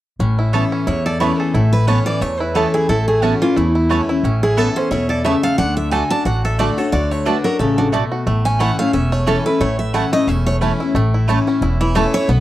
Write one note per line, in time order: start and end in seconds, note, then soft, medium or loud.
0.19 0.62 A1 medium
0.19 0.84 A2 medium
0.19 0.72 C#4 medium
0.39 0.87 E4 medium
0.53 0.85 E3 medium
0.53 0.63 B3 medium
0.53 0.86 B3 medium
0.53 0.86 C#4 medium
0.53 0.63 E4 medium
0.53 0.86 E4 medium
0.53 1.05 A4 medium
0.53 0.64 C#5 medium
0.53 0.64 A5 medium
0.72 1.88 C#4 medium
0.87 1.30 E2 medium
0.87 1.52 E2 medium
0.87 1.54 E4 medium
0.87 1.05 C#5 medium
1.06 1.39 A4 medium
1.06 1.20 D5 medium
1.20 1.53 E3 medium
1.20 2.21 A3 medium
1.20 1.30 B3 medium
1.20 1.54 B3 medium
1.20 1.54 C#4 medium
1.20 1.31 E4 loud
1.20 1.54 E4 medium
1.20 1.39 B4 medium
1.20 1.31 C#5 medium
1.20 1.31 A5 medium
1.39 1.54 G#4 medium
1.39 2.80 A4 medium
1.54 1.97 A1 medium
1.54 2.19 A2 medium
1.54 2.40 E4 medium
1.54 1.72 A4 medium
1.73 1.87 B4 loud
1.87 2.21 E3 medium
1.87 1.98 B3 medium
1.87 2.21 B3 medium
1.87 3.22 C#4 medium
1.87 2.21 C#4 medium
1.87 1.98 E4 medium
1.87 2.21 E4 medium
1.87 2.05 C#5 medium
1.87 1.98 C#5 loud
1.87 1.98 A5 loud
2.06 3.41 E3 medium
2.06 2.21 D5 loud
2.21 2.64 E2 medium
2.21 2.86 E2 medium
2.21 2.55 A3 medium
2.21 2.40 C#5 medium
2.40 2.74 E4 medium
2.40 2.55 B4 medium
2.55 2.88 E3 medium
2.55 3.07 A3 medium
2.55 2.65 B3 medium
2.55 2.88 B3 medium
2.55 2.88 C#4 medium
2.55 2.66 E4 loud
2.55 2.89 E4 medium
2.55 2.73 A4 medium
2.55 2.66 C#5 medium
2.55 2.66 A5 loud
2.74 2.89 E4 medium
2.74 2.89 G#4 medium
2.89 3.32 A1 medium
2.89 3.54 A2 medium
2.89 3.75 E4 medium
2.89 3.07 A4 medium
3.08 3.56 A3 medium
3.08 3.23 G#4 medium
3.22 3.41 E3 medium
3.22 3.33 B3 loud
3.22 3.41 B3 medium
3.22 3.72 C#4 medium
3.22 3.42 C#4 medium
3.22 3.33 E4 loud
3.22 3.41 E4 medium
3.22 3.41 F#4 medium
3.22 3.33 C#5 medium
3.22 3.33 A5 loud
3.42 3.87 E3 medium
3.42 3.57 C#4 soft
3.42 3.56 E4 medium
3.42 3.57 F4 medium
3.56 3.99 E2 medium
3.56 4.21 E2 medium
3.56 3.90 A3 medium
3.56 3.91 E4 medium
3.75 4.08 E4 medium
3.89 4.08 E3 medium
3.89 5.24 A3 medium
3.89 4.00 B3 medium
3.89 4.09 B3 medium
3.89 4.09 C#4 medium
3.89 4.00 E4 medium
3.89 4.08 E4 medium
3.89 4.00 C#5 loud
3.89 4.01 A5 loud
4.09 4.24 C#4 soft
4.09 4.23 E4 medium
4.09 4.42 E4 medium
4.23 4.66 A1 medium
4.23 4.89 A2 medium
4.23 4.73 C#4 medium
4.43 4.89 E4 medium
4.43 4.58 G#4 medium
4.57 4.90 E3 medium
4.57 4.67 B3 medium
4.57 4.90 B3 medium
4.57 4.91 C#4 medium
4.57 4.68 E4 medium
4.57 4.91 E4 medium
4.57 4.76 A4 medium
4.57 5.10 A4 medium
4.57 4.68 C#5 medium
4.57 4.68 A5 loud
4.76 5.22 C#4 medium
4.76 4.90 C5 medium
4.91 5.33 E2 medium
4.91 5.24 B2 medium
4.91 5.40 E4 medium
4.91 5.09 C#5 medium
5.09 5.43 A4 medium
5.09 5.24 D5 medium
5.24 5.58 C#3 medium
5.24 6.60 A3 medium
5.24 5.35 B3 medium
5.24 5.35 E4 medium
5.24 5.35 C#5 medium
5.24 5.43 E5 medium
5.24 5.35 A5 loud
5.43 5.92 A4 medium
5.43 5.58 F5 loud
5.58 6.01 D2 medium
5.58 5.91 D3 medium
5.58 6.11 D4 medium
5.58 5.76 F#5 loud
5.77 5.91 E5 medium
5.91 6.10 D3 medium
5.91 6.02 A3 medium
5.91 6.11 A3 medium
5.91 6.11 D4 medium
5.91 6.02 F#4 medium
5.91 6.10 F#4 medium
5.91 6.45 A4 medium
5.91 6.02 D5 medium
5.91 6.10 G#5 medium
5.91 6.02 A5 loud
6.10 6.56 D4 medium
6.10 6.26 D4 soft
6.10 6.25 F#4 medium
6.10 6.25 A5 loud
6.25 6.68 A1 medium
6.25 6.90 A2 medium
6.25 6.74 F#4 medium
6.25 6.44 F#5 medium
6.45 6.78 A4 medium
6.45 6.59 E5 medium
6.59 6.77 D3 medium
6.59 6.69 A3 medium
6.59 7.11 A3 medium
6.59 6.78 A3 medium
6.59 6.78 D4 medium
6.59 6.69 F#4 medium
6.59 6.76 F#4 medium
6.59 6.78 D5 medium
6.59 6.69 D5 medium
6.59 6.70 A5 medium
6.78 6.93 D4 soft
6.78 6.92 F#4 medium
6.78 8.18 A4 medium
6.78 6.92 C#5 medium
6.92 7.35 D2 medium
6.92 7.25 D3 medium
6.92 7.41 F#4 medium
6.92 7.11 D5 medium
7.11 7.59 A3 medium
7.11 7.26 C#5 loud
7.25 7.44 D3 medium
7.25 7.36 A3 medium
7.25 7.45 A3 medium
7.25 7.75 D4 medium
7.25 7.45 D4 medium
7.25 7.36 F#4 medium
7.25 7.44 F#4 medium
7.25 7.44 B4 medium
7.25 7.36 D5 medium
7.25 7.37 A5 loud
7.44 7.90 F#3 medium
7.44 7.60 D4 soft
7.44 7.59 F#4 soft
7.44 7.59 A#4 medium
7.59 8.02 A1 medium
7.59 7.92 C#3 medium
7.59 7.92 A3 medium
7.59 7.78 A4 medium
7.78 7.87 D4 medium
7.78 8.10 F#4 medium
7.92 8.26 B2 medium
7.92 8.03 A3 medium
7.92 8.26 A3 medium
7.92 8.03 F#4 medium
7.92 8.03 D5 loud
7.92 8.03 A5 loud
8.12 8.27 F#4 medium
8.26 8.69 A1 medium
8.26 8.91 A2 medium
8.26 8.78 A3 medium
8.45 8.94 C#4 medium
8.45 8.60 G#5 medium
8.59 8.78 E3 medium
8.59 8.70 A3 medium
8.59 8.78 A3 medium
8.59 8.79 C#4 medium
8.59 8.70 E4 medium
8.59 9.46 E4 medium
8.59 8.77 E4 medium
8.59 8.70 C#5 medium
8.59 8.78 F#5 medium
8.59 8.70 A5 loud
8.79 9.12 A3 medium
8.79 8.94 C#4 soft
8.79 8.93 E4 medium
8.79 8.93 F5 loud
8.93 9.36 E1 medium
8.93 9.58 E2 medium
8.93 9.27 C#4 medium
8.93 9.12 E5 medium
9.12 9.60 A3 medium
9.12 9.27 C#5 medium
9.26 9.45 E3 medium
9.26 9.37 A3 medium
9.26 9.46 A3 medium
9.26 9.76 C#4 medium
9.26 9.46 C#4 medium
9.26 9.37 E4 medium
9.26 9.45 E4 medium
9.26 9.45 A4 medium
9.26 9.37 C#5 medium
9.26 9.37 A5 loud
9.46 9.61 C#4 soft
9.46 9.60 E4 medium
9.46 9.91 E4 medium
9.46 9.60 B4 medium
9.60 10.03 A1 medium
9.60 10.25 A2 medium
9.60 10.09 A3 medium
9.60 9.79 C#5 medium
9.79 9.94 E5 medium
9.94 10.12 E3 medium
9.94 10.04 A3 medium
9.94 10.13 A3 medium
9.94 10.13 C#4 medium
9.94 10.04 E4 loud
9.94 10.43 E4 medium
9.94 10.12 E4 medium
9.94 10.04 C#5 medium
9.94 10.12 F#5 medium
9.94 10.04 A5 medium
10.13 10.45 A3 medium
10.13 10.28 C#4 soft
10.13 10.27 E4 medium
10.13 10.28 D#5 loud
10.27 10.70 E1 medium
10.27 10.92 E2 medium
10.27 10.60 C#4 medium
10.27 10.46 E5 medium
10.46 10.92 A3 medium
10.46 10.55 C#5 loud
10.61 10.79 E3 medium
10.61 10.71 A3 medium
10.61 10.80 A3 medium
10.61 10.95 C#4 medium
10.61 10.80 C#4 medium
10.61 10.71 E4 medium
10.61 10.79 E4 medium
10.61 10.71 C#5 medium
10.61 10.72 A5 loud
10.80 10.95 C#4 soft
10.80 10.95 E4 medium
10.80 10.94 E4 medium
10.94 11.37 A1 medium
10.94 11.59 A2 loud
10.94 11.28 A3 medium
11.14 11.59 E4 medium
11.28 11.46 E3 medium
11.28 11.38 A3 medium
11.28 11.77 A3 medium
11.28 11.47 A3 medium
11.28 11.47 C#4 medium
11.28 11.38 E4 medium
11.28 11.46 E4 medium
11.28 11.38 C#5 medium
11.28 11.39 A5 loud
11.47 11.93 C#4 medium
11.47 11.62 C#4 soft
11.47 11.61 E4 medium
11.61 12.04 E1 medium
11.61 12.26 E2 medium
11.61 12.11 E4 medium
11.81 12.26 E3 medium
11.81 11.95 E4 medium
11.95 12.27 E3 loud
11.95 12.05 A3 medium
11.95 12.29 A3 medium
11.95 12.28 A3 medium
11.95 12.28 C#4 loud
11.95 12.05 E4 loud
11.95 12.28 E4 loud
11.95 12.13 A4 medium
11.95 12.05 C#5 medium
11.95 12.05 A5 loud
12.14 12.29 E4 medium
12.14 12.28 C#5 loud
12.28 12.40 B1 medium
12.28 12.40 B2 medium
12.28 12.40 B3 medium
12.28 12.40 B4 medium